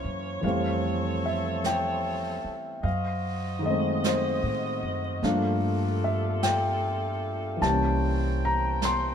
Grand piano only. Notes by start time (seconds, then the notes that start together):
Already playing: E3 A#3 C#4 G4
0.41 E3 G3 F5
0.46 A3 C4
1.26 E5
1.66 G5
2.83 F5
3.59 D#3 G#3
3.66 A3 D#5
3.70 C4
4.06 C5
5.23 F3 A3 A#3 D4 F5
6.04 E5
6.43 G5
7.57 E3 G3
7.62 A#3 A5
7.68 C#4
8.45 A#5
8.85 C6